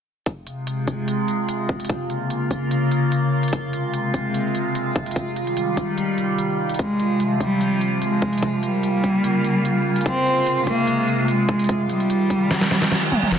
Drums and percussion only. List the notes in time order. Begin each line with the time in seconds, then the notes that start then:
0.26 kick, closed hi-hat
0.47 closed hi-hat
0.67 closed hi-hat
0.87 kick, closed hi-hat
1.08 closed hi-hat
1.28 closed hi-hat
1.49 closed hi-hat
1.69 kick
1.80 closed hi-hat
1.85 closed hi-hat
1.89 kick, closed hi-hat
2.10 closed hi-hat
2.30 closed hi-hat
2.51 kick, closed hi-hat
2.71 closed hi-hat
2.92 closed hi-hat
3.12 closed hi-hat
3.43 closed hi-hat
3.48 closed hi-hat
3.53 kick, closed hi-hat
3.73 closed hi-hat
3.94 closed hi-hat
4.14 kick, closed hi-hat
4.34 closed hi-hat
4.55 closed hi-hat
4.75 closed hi-hat
4.96 kick
5.06 closed hi-hat
5.11 closed hi-hat
5.16 kick, closed hi-hat
5.36 closed hi-hat
5.47 closed hi-hat
5.57 closed hi-hat
5.77 kick, closed hi-hat
5.98 closed hi-hat
6.18 closed hi-hat
6.38 closed hi-hat
6.70 closed hi-hat
6.74 closed hi-hat
6.79 kick, closed hi-hat
7.00 closed hi-hat
7.20 closed hi-hat
7.40 kick, closed hi-hat
7.61 closed hi-hat
7.81 closed hi-hat
8.02 closed hi-hat
8.22 kick
8.33 closed hi-hat
8.38 closed hi-hat
8.43 kick, closed hi-hat
8.63 closed hi-hat
8.83 closed hi-hat
9.04 kick, closed hi-hat
9.24 closed hi-hat
9.45 closed hi-hat
9.65 closed hi-hat
9.96 closed hi-hat
10.01 closed hi-hat
10.06 kick, closed hi-hat
10.26 closed hi-hat
10.47 closed hi-hat
10.67 kick, closed hi-hat
10.87 closed hi-hat
11.08 closed hi-hat
11.28 closed hi-hat
11.49 kick
11.59 closed hi-hat
11.64 closed hi-hat
11.69 kick, closed hi-hat
11.90 closed hi-hat
12.00 closed hi-hat
12.10 closed hi-hat
12.30 kick, closed hi-hat
12.51 snare, closed hi-hat
12.61 snare
12.71 snare, closed hi-hat
12.82 snare
12.92 snare, closed hi-hat
13.02 closed hi-hat
13.12 kick, mid tom
13.23 closed hi-hat, mid tom
13.28 closed hi-hat
13.32 snare, closed hi-hat